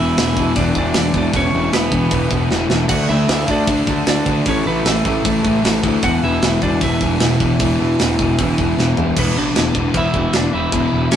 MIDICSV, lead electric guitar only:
0, 0, Header, 1, 2, 480
1, 0, Start_track
1, 0, Tempo, 390625
1, 1654, Time_signature, 4, 2, 24, 8
1, 13715, End_track
2, 0, Start_track
2, 0, Title_t, "Lead electric guitar"
2, 0, Program_c, 0, 29
2, 0, Note_on_c, 0, 64, 90
2, 0, Note_on_c, 0, 76, 106
2, 652, Note_off_c, 0, 64, 0
2, 695, Note_on_c, 0, 74, 102
2, 716, Note_off_c, 0, 76, 0
2, 723, Note_on_c, 0, 62, 73
2, 934, Note_off_c, 0, 62, 0
2, 942, Note_off_c, 0, 74, 0
2, 961, Note_on_c, 0, 74, 84
2, 978, Note_on_c, 0, 62, 76
2, 1172, Note_off_c, 0, 74, 0
2, 1181, Note_off_c, 0, 62, 0
2, 1200, Note_on_c, 0, 62, 69
2, 1208, Note_on_c, 0, 74, 80
2, 1412, Note_off_c, 0, 62, 0
2, 1432, Note_off_c, 0, 74, 0
2, 1432, Note_on_c, 0, 62, 59
2, 1447, Note_on_c, 0, 74, 78
2, 1646, Note_off_c, 0, 62, 0
2, 1669, Note_off_c, 0, 74, 0
2, 1674, Note_on_c, 0, 73, 101
2, 1686, Note_on_c, 0, 61, 77
2, 2116, Note_off_c, 0, 61, 0
2, 2131, Note_off_c, 0, 73, 0
2, 2136, Note_on_c, 0, 71, 80
2, 2145, Note_on_c, 0, 59, 63
2, 3043, Note_off_c, 0, 71, 0
2, 3047, Note_off_c, 0, 59, 0
2, 3555, Note_on_c, 0, 78, 102
2, 3576, Note_on_c, 0, 66, 82
2, 3791, Note_off_c, 0, 78, 0
2, 3796, Note_off_c, 0, 66, 0
2, 3796, Note_on_c, 0, 76, 121
2, 3809, Note_on_c, 0, 64, 89
2, 4255, Note_off_c, 0, 64, 0
2, 4297, Note_off_c, 0, 76, 0
2, 4310, Note_on_c, 0, 74, 108
2, 4322, Note_on_c, 0, 62, 90
2, 4971, Note_off_c, 0, 74, 0
2, 4977, Note_off_c, 0, 62, 0
2, 5026, Note_on_c, 0, 74, 86
2, 5038, Note_on_c, 0, 62, 77
2, 5466, Note_off_c, 0, 74, 0
2, 5472, Note_off_c, 0, 62, 0
2, 5499, Note_on_c, 0, 61, 76
2, 5511, Note_on_c, 0, 73, 93
2, 5718, Note_off_c, 0, 61, 0
2, 5725, Note_off_c, 0, 73, 0
2, 5739, Note_on_c, 0, 71, 101
2, 5749, Note_on_c, 0, 59, 71
2, 5960, Note_off_c, 0, 71, 0
2, 5962, Note_off_c, 0, 59, 0
2, 5968, Note_on_c, 0, 69, 82
2, 5974, Note_on_c, 0, 57, 65
2, 6883, Note_off_c, 0, 69, 0
2, 6887, Note_off_c, 0, 57, 0
2, 7421, Note_on_c, 0, 78, 125
2, 7426, Note_on_c, 0, 66, 85
2, 7643, Note_off_c, 0, 78, 0
2, 7645, Note_off_c, 0, 66, 0
2, 7664, Note_on_c, 0, 76, 118
2, 7671, Note_on_c, 0, 64, 88
2, 8108, Note_off_c, 0, 76, 0
2, 8112, Note_off_c, 0, 64, 0
2, 8147, Note_on_c, 0, 74, 100
2, 8162, Note_on_c, 0, 62, 77
2, 8375, Note_off_c, 0, 62, 0
2, 8388, Note_off_c, 0, 74, 0
2, 8388, Note_on_c, 0, 76, 87
2, 8394, Note_on_c, 0, 64, 77
2, 10743, Note_off_c, 0, 64, 0
2, 10789, Note_off_c, 0, 76, 0
2, 11294, Note_on_c, 0, 71, 95
2, 11305, Note_on_c, 0, 59, 71
2, 11509, Note_off_c, 0, 59, 0
2, 11516, Note_on_c, 0, 62, 94
2, 11521, Note_off_c, 0, 71, 0
2, 11521, Note_on_c, 0, 74, 101
2, 12181, Note_off_c, 0, 62, 0
2, 12252, Note_off_c, 0, 74, 0
2, 12255, Note_on_c, 0, 76, 109
2, 12263, Note_on_c, 0, 64, 82
2, 12691, Note_off_c, 0, 64, 0
2, 12716, Note_on_c, 0, 62, 81
2, 12727, Note_on_c, 0, 74, 82
2, 12733, Note_off_c, 0, 76, 0
2, 12934, Note_off_c, 0, 62, 0
2, 12941, Note_on_c, 0, 76, 96
2, 12958, Note_on_c, 0, 64, 83
2, 12960, Note_off_c, 0, 74, 0
2, 13620, Note_off_c, 0, 64, 0
2, 13661, Note_on_c, 0, 61, 87
2, 13664, Note_on_c, 0, 73, 90
2, 13682, Note_off_c, 0, 76, 0
2, 13715, Note_off_c, 0, 61, 0
2, 13715, Note_off_c, 0, 73, 0
2, 13715, End_track
0, 0, End_of_file